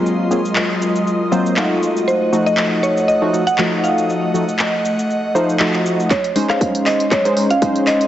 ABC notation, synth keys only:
X:1
M:4/4
L:1/16
Q:"Swing 16ths" 1/4=119
K:Bbm
V:1 name="Synth keys"
[G,B,CFA]2 [G,B,CFA] z6 z [G,B,CFc]2 [=A,EFG]4- | [=A,EFG]2 [F,A,EG]6- [F,A,EG] [F,A,EG] [F,A,EG] z [F,A,EG]4- | [F,=A,EG]2 [F,A,EG] z6 z [F,A,Ec]2 [F,A,EG]4 | z2 [A,DEc]6- [A,DEc] [A,DEc] [A,DEc] z [A,DEc]4 |]